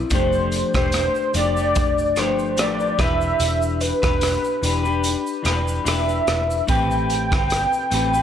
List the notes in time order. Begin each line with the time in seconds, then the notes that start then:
Already playing: C4 E4 B4 D5
0.10 F1 F3 A3 D4 G4 C5, kick, closed hi-hat, shaker
0.33 shaker
0.52 closed hi-hat, shaker
0.74 E1 D4 G4 C5, kick, cross-stick, shaker
0.78 A3
0.92 cross-stick, closed hi-hat, shaker
1.15 shaker
1.33 F1 F3 A3 D4 G4 D5, closed hi-hat, shaker
1.57 A3 D4 G4, shaker
1.75 kick, closed hi-hat, shaker
1.98 shaker
2.16 G1 F3 A3 D4 G4 C5, cross-stick, closed hi-hat, shaker
2.39 shaker
2.57 A1 F3 A3 D4 G4 D5, cross-stick, closed hi-hat, shaker
2.80 shaker
2.99 E1 E3 D4 G4 B4 E5, kick, cross-stick, closed hi-hat, shaker
3.21 shaker
3.40 E1, closed hi-hat, shaker
3.62 shaker
3.81 B4, closed hi-hat, shaker
4.02 E1 D4 G4 B4, kick, cross-stick, shaker
4.21 cross-stick, closed hi-hat, shaker
4.44 shaker
4.62 E1 E3 D4 G4 B4, closed hi-hat, shaker
4.83 D4 G4 B4, shaker
5.04 closed hi-hat, shaker
5.27 shaker
5.42 E1 E3 D4 G4 B4, cross-stick, closed hi-hat, shaker
5.68 shaker
5.84 E1 E3 D4 G4 B4 E5, cross-stick, closed hi-hat, shaker
6.09 shaker
6.27 E1, cross-stick, closed hi-hat, shaker
6.51 shaker
6.67 A1 A3 C4 G4 B4 G5, kick, closed hi-hat, shaker
6.91 shaker
7.10 closed hi-hat, shaker
7.31 G1 G4 B4, kick, cross-stick, shaker
7.35 C4
7.50 cross-stick, closed hi-hat, shaker
7.73 shaker
7.90 A1 A3 C4 G4, closed hi-hat, shaker
7.95 B4
8.14 C4 G4 B4, shaker